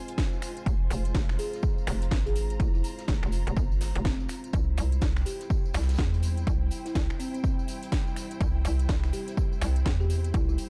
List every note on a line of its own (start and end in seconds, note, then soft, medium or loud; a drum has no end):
0.00 4.49 G#3 medium
0.00 4.49 C4 medium
0.00 4.49 F4 medium
0.00 4.53 F4 medium
0.00 4.53 C5 medium
0.00 10.69 C5 medium
0.00 1.51 G#5 medium
0.08 closed hi-hat medium
0.08 closed hi-hat soft
0.08 tambourine soft
0.18 kick loud
0.18 snare loud
0.18 closed hi-hat medium
0.18 tambourine medium
0.18 tambourine soft
0.33 tambourine soft
0.42 finger snap medium
0.42 snare soft
0.42 open hi-hat loud
0.42 tambourine medium
0.57 closed hi-hat medium
0.57 tambourine soft
0.66 0.89 F1 medium
0.66 kick loud
0.66 closed hi-hat medium
0.66 tambourine soft
0.66 tambourine medium
0.90 1.13 F1 medium
0.90 open hi-hat loud
0.90 tambourine medium
1.05 closed hi-hat medium
1.05 tambourine soft
1.14 1.37 F1 loud
1.14 kick loud
1.14 snare loud
1.14 closed hi-hat medium
1.14 tambourine medium
1.14 tambourine soft
1.29 finger snap medium
1.29 snare soft
1.29 tambourine soft
1.35 1.61 G#4 medium
1.35 5.18 A#5 medium
1.35 open hi-hat loud
1.39 tambourine medium
1.53 snare soft
1.53 closed hi-hat medium
1.53 tambourine soft
1.63 kick loud
1.63 tambourine medium
1.63 tambourine soft
1.78 tambourine soft
1.87 2.10 F1 loud
1.87 finger snap medium
1.87 open hi-hat loud
1.87 tambourine medium
2.02 closed hi-hat soft
2.02 tambourine soft
2.11 2.58 G#1 loud
2.11 kick loud
2.11 snare loud
2.11 closed hi-hat medium
2.11 tambourine medium
2.11 tambourine soft
2.26 2.58 G#4 medium
2.26 closed hi-hat soft
2.26 tambourine soft
2.36 open hi-hat loud
2.36 tambourine medium
2.50 closed hi-hat medium
2.50 tambourine soft
2.60 2.82 F1 medium
2.60 2.69 E4 medium
2.60 kick loud
2.60 closed hi-hat medium
2.60 tambourine medium
2.60 tambourine soft
2.74 2.81 E4 medium
2.74 tambourine soft
2.84 open hi-hat loud
2.84 tambourine medium
2.99 snare soft
2.99 closed hi-hat soft
2.99 tambourine soft
3.08 3.21 F1 medium
3.08 kick loud
3.08 snare loud
3.08 closed hi-hat medium
3.08 tambourine medium
3.08 tambourine soft
3.23 3.45 F1 medium
3.23 finger snap medium
3.23 tambourine soft
3.32 open hi-hat loud
3.32 tambourine medium
3.47 3.55 F1 medium
3.47 closed hi-hat soft
3.47 tambourine soft
3.57 3.93 G1 medium
3.57 kick loud
3.57 tambourine medium
3.57 tambourine soft
3.72 tambourine soft
3.81 snare loud
3.81 open hi-hat loud
3.81 tambourine medium
3.95 4.28 F1 loud
3.95 closed hi-hat soft
3.95 tambourine soft
4.05 4.59 C4 medium
4.05 kick loud
4.05 snare loud
4.05 closed hi-hat medium
4.05 tambourine medium
4.05 tambourine soft
4.20 tambourine soft
4.28 finger snap medium
4.28 snare soft
4.28 open hi-hat loud
4.28 tambourine medium
4.44 closed hi-hat soft
4.44 tambourine soft
4.53 4.76 C2 medium
4.53 10.69 G3 medium
4.53 10.69 C4 medium
4.53 10.69 E4 medium
4.53 kick loud
4.53 closed hi-hat medium
4.53 tambourine medium
4.53 tambourine soft
4.71 10.69 C5 medium
4.77 5.00 C2 loud
4.77 open hi-hat loud
4.77 tambourine medium
4.92 closed hi-hat soft
4.92 tambourine soft
5.01 5.24 C2 medium
5.01 kick loud
5.01 snare loud
5.01 closed hi-hat medium
5.01 tambourine medium
5.01 tambourine soft
5.09 10.69 G5 medium
5.17 finger snap medium
5.17 snare soft
5.17 tambourine soft
5.26 5.48 G4 medium
5.26 open hi-hat loud
5.26 tambourine medium
5.40 snare soft
5.40 closed hi-hat medium
5.40 tambourine soft
5.50 kick loud
5.50 tambourine medium
5.50 tambourine soft
5.65 tambourine soft
5.74 5.97 C2 loud
5.74 finger snap medium
5.74 snare medium
5.74 open hi-hat loud
5.74 tambourine medium
5.81 snare medium
5.81 tambourine medium
5.89 snare medium
5.89 closed hi-hat soft
5.89 tambourine medium
5.89 tambourine soft
5.94 snare medium
5.94 tambourine medium
5.98 6.45 E2 medium
5.98 kick loud
5.98 snare loud
5.98 closed hi-hat medium
5.98 tambourine medium
5.99 tambourine soft
6.14 closed hi-hat soft
6.14 tambourine soft
6.22 open hi-hat loud
6.22 tambourine medium
6.37 closed hi-hat soft
6.37 tambourine soft
6.47 6.70 C2 medium
6.47 kick loud
6.47 closed hi-hat medium
6.47 tambourine soft
6.47 tambourine medium
6.71 open hi-hat loud
6.71 tambourine medium
6.86 6.92 E4 medium
6.86 snare soft
6.86 closed hi-hat soft
6.86 tambourine soft
6.95 7.08 C2 loud
6.95 7.05 E4 medium
6.95 kick loud
6.95 snare loud
6.95 closed hi-hat medium
6.95 tambourine medium
6.95 tambourine soft
7.10 finger snap medium
7.10 tambourine soft
7.19 7.29 C4 medium
7.19 open hi-hat medium
7.19 tambourine medium
7.34 7.40 C4 medium
7.34 closed hi-hat medium
7.34 tambourine soft
7.44 kick loud
7.44 tambourine medium
7.44 tambourine soft
7.59 tambourine soft
7.68 open hi-hat loud
7.68 tambourine medium
7.83 closed hi-hat soft
7.83 tambourine soft
7.92 kick loud
7.92 snare loud
7.92 closed hi-hat medium
7.92 tambourine medium
7.92 tambourine soft
8.07 tambourine soft
8.16 finger snap medium
8.16 snare soft
8.16 open hi-hat loud
8.16 tambourine medium
8.31 closed hi-hat medium
8.31 tambourine soft
8.40 8.63 C2 medium
8.40 kick loud
8.40 closed hi-hat medium
8.40 tambourine medium
8.40 tambourine soft
8.65 8.87 C2 medium
8.65 open hi-hat medium
8.65 tambourine medium
8.79 closed hi-hat medium
8.79 tambourine soft
8.89 9.12 C2 medium
8.89 kick loud
8.89 snare loud
8.89 closed hi-hat medium
8.89 tambourine medium
8.89 tambourine soft
9.04 finger snap medium
9.04 snare soft
9.04 tambourine soft
9.13 9.35 G4 medium
9.13 open hi-hat medium
9.13 tambourine medium
9.28 snare soft
9.28 closed hi-hat medium
9.28 tambourine soft
9.37 kick loud
9.37 tambourine medium
9.37 tambourine soft
9.53 tambourine soft
9.61 9.84 C2 medium
9.61 finger snap medium
9.61 open hi-hat loud
9.61 tambourine medium
9.76 closed hi-hat medium
9.76 tambourine soft
9.86 10.33 E2 loud
9.86 kick loud
9.86 snare loud
9.86 closed hi-hat medium
9.86 tambourine medium
9.86 tambourine soft
10.00 10.32 G4 medium
10.00 tambourine soft
10.10 open hi-hat loud
10.10 tambourine medium
10.24 closed hi-hat medium
10.24 tambourine soft
10.34 10.57 C2 loud
10.34 10.43 E4 medium
10.34 kick loud
10.34 closed hi-hat medium
10.34 tambourine medium
10.34 tambourine soft
10.49 10.55 E4 medium
10.49 tambourine soft
10.58 open hi-hat medium
10.58 tambourine medium